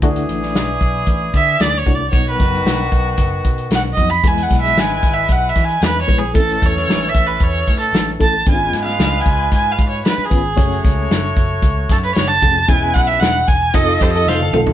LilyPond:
<<
  \new Staff \with { instrumentName = "Erhu" } { \time 4/4 \key a \major \tempo 4 = 114 r2 r8 e''8 \tuplet 3/2 { d''8 cis''8 d''8 } | \tuplet 3/2 { cis''8 b'4~ } b'16 r4. r16 \tuplet 3/2 { fis''8 dis''8 b''8 } | \tuplet 3/2 { gis''8 fis''8 e''8 gis''8 gis''8 e''8 fis''8 e''8 gis''8 b'8 cis''8 gis'8 } | a'8 cis''8~ \tuplet 3/2 { cis''8 e''8 b'8 cis''4 a'8~ } a'16 r16 a''8 |
\tuplet 3/2 { gis''4 eis''8~ eis''8 gis''4 gis''8 eis''8 cis''8 b'8 gis'4~ } | gis'8. r4. r16 a'16 b'16 cis''16 a''8. | gis''8 fis''16 e''16 fis''8 gis''8 ees''8 c''16 ees''16 f''8 r8 | }
  \new Staff \with { instrumentName = "Clean electric guitar" } { \time 4/4 \key a \major r1 | r1 | r1 | r1 |
r1 | r1 | r2 a'16 f'16 g'16 a'16 c''16 a'8. | }
  \new Staff \with { instrumentName = "Horn section" } { \time 4/4 \key a \major <e d' gis'>2.~ <e d' gis'>8 r8 | <dis b fis'>2.~ <dis b fis'>8 r8 | <gis e' b'>2.~ <gis e' b'>8 r8 | <e cis' a'>2.~ <e cis' a'>8 r8 |
<gis eis' b'>2.~ <gis eis' b'>8 r8 | <a fis' cis''>2.~ <a fis' cis''>8 r8 | <gis e' b'>4. r8 <f ees' a'>4. r8 | }
  \new Staff \with { instrumentName = "Reed electric piano" } { \time 4/4 \key a \major <a d' e' fis'>4 r2 r8 <a d' e' fis'>16 r16 | <fis b dis' fis'>4 r2 r8 <fis b dis' fis'>16 r16 | <gis b e' gis'>4 r2 r8 <gis b e' b'>16 r16 | <a c' cis' e' a'>4 r2 r8 <a cis' e' a'>16 r16 |
<b cis' d' eis' gis'>4 r2 r8 <b cis' eis' b'>16 r16 | <a cis' fis' cis''>4 r2 r8 <a cis' fis' gis'>16 r16 | <b cis' e' gis'>4 r4 <c' ees' f' a'>4 r8 <c' ees' f' a'>16 r16 | }
  \new Staff \with { instrumentName = "Picked electric bass" } { \clef bass \time 4/4 \key a \major d,8 a,,8 b,,8 b,,8 a,,8 d8 d,8 c,8 | b,,8 fis,,8 b,,8 b,,8 fis,,8 b,8 b,,8 f,8 | e,8 b,,8 gis,,8 gis,,8 b,,8 e8 e,8 bes,,8 | a,,8 e,8 a,,8 a,,8 e,8 a,8 a,,8 a,,8 |
gis,,8 gis,8 cis,8 cis,8 gis,8 gis,8 r8 gis,,8 | fis,,8 cis,8 fis,,8 fis,,8 cis,8 fis,8 fis,,8 f,,8 | e,,8 b,,8 e,,8 e,,8 f,,8 f,8 f,,8 b,,8 | }
  \new DrumStaff \with { instrumentName = "Drums" } \drummode { \time 4/4 <hh bd>16 hh16 hh16 sn16 <hh sn>8 <hh bd>8 <hh bd>8 <hh bd>8 <hh sn>8 <hh bd>8 | <hh bd>8 <hh bd sn>16 sn16 <hh sn>8 <hh bd>8 <hh bd>8 <hh bd>16 hh16 <hh sn>8 <hh bd>8 | <hh bd>16 hh16 <hh bd sn>16 sn16 <hh sn>8 <hh bd>8 <hh bd>8 <hh bd sn>16 hh16 <hh sn>8 <hh bd>8 | <hh bd>16 hh16 <hh bd sn>16 sn16 <hh sn>8 <hh bd>8 <hh bd>8 <hh bd sn>16 hh16 <hh sn>8 <hh bd>8 |
<hh bd>8 <hh sn>16 sn16 <hh sn>8 <hh bd>8 <hh bd>8 <hh bd>8 <hh sn>8 <hh bd>8 | <hh bd>16 hh16 <hh bd sn>8 <hh sn>8 <hh bd>8 <hh bd>8 <hh bd sn>16 hh16 <hh sn>8 <hh bd>8 | <hh bd>8 <hh bd sn>16 sn16 <hh sn>8 <hh bd>8 <hh bd>8 <hh bd sn>16 hh16 sn16 tommh16 toml16 tomfh16 | }
>>